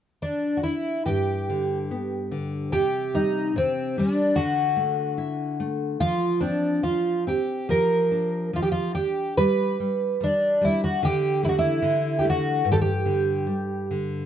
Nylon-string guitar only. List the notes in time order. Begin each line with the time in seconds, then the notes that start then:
1.05 G2
1.50 D3
1.91 B3
2.31 D3
2.72 C3
3.14 G3
3.56 C3
3.98 G3
4.36 D3
4.76 A3
5.18 E4
5.60 A3
6.00 F3
6.42 C4
6.83 F3
7.27 C4
7.69 F3
8.11 D4
8.53 F3
8.97 D4
9.38 G3
9.80 G3
10.21 G3
10.61 G3
11.03 D3
11.43 A3
11.82 D3
12.24 A3
12.64 G2
13.06 D3
13.47 G3
13.91 D3